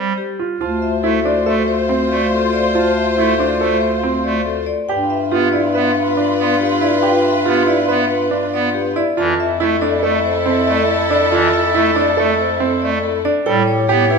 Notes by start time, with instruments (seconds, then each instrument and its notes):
Already playing: pipe organ G3, vibraphone C5
0.18 vibraphone G4
0.39 grand piano F4
0.60 bass clarinet D2, grand piano F4, string section F4 C5, clarinet C5, vibraphone A5
0.82 vibraphone E5
1.03 pipe organ A3, grand piano E4, vibraphone A4
1.25 grand piano D4, vibraphone D5
1.46 pipe organ A3, grand piano A4, vibraphone E5
1.68 vibraphone C5
1.89 grand piano C4
2.11 pipe organ A3, vibraphone D5
2.33 vibraphone A4
2.53 vibraphone D5
2.75 grand piano F4, vibraphone A5
2.98 vibraphone E5
3.18 pipe organ A3, grand piano E4, vibraphone A4
3.39 grand piano D4, vibraphone D5
3.60 pipe organ A3, grand piano A4, vibraphone E5
3.81 vibraphone C5
4.03 grand piano C4
4.24 pipe organ A3, vibraphone D5
4.46 vibraphone A4
4.66 vibraphone D5
4.89 bass clarinet G2, string section F4 B4, grand piano G4, clarinet B4, vibraphone G5
5.10 vibraphone E5
5.31 pipe organ B3, grand piano F4, vibraphone G4
5.52 grand piano E4, vibraphone D5
5.74 pipe organ B3, grand piano B4, vibraphone E5
5.95 vibraphone B4
6.17 grand piano D4
6.38 pipe organ B3, vibraphone D5
6.60 vibraphone G4
6.81 grand piano E4, vibraphone D5
7.03 grand piano G4, vibraphone G5
7.24 vibraphone E5
7.46 pipe organ B3, grand piano F4, vibraphone G4
7.67 grand piano E4, vibraphone D5
7.88 pipe organ B3, grand piano B4, vibraphone E5
8.10 vibraphone B4
8.31 grand piano D4
8.53 pipe organ B3, vibraphone D5
8.74 vibraphone G4
8.96 grand piano E4, vibraphone D5
9.17 bass clarinet F2, pipe organ E3, string section E4 A4, grand piano F4, clarinet A4, vibraphone A5
9.40 vibraphone E5
9.60 pipe organ A3, grand piano E4, vibraphone A4
9.81 grand piano D4, vibraphone D5
10.03 pipe organ A3, grand piano A4, vibraphone E5
10.25 vibraphone C5
10.46 grand piano C4
10.67 pipe organ A3, vibraphone D5
10.90 vibraphone A4
11.10 grand piano D4, vibraphone D5
11.32 pipe organ E3, grand piano F4, vibraphone A5
11.54 vibraphone E5
11.75 pipe organ A3, grand piano E4, vibraphone A4
11.95 grand piano D4, vibraphone D5
12.17 pipe organ A3, grand piano A4, vibraphone E5
12.39 vibraphone C5
12.60 grand piano C4
12.82 pipe organ A3, vibraphone D5
13.03 vibraphone A4
13.25 grand piano D4, vibraphone D5
13.46 bass clarinet A2, pipe organ G3, string section G4 C#5, grand piano A4, clarinet C#5, vibraphone G5
13.67 vibraphone C#5
13.89 pipe organ B3, vibraphone G4, grand piano G4
14.10 grand piano E4, vibraphone B4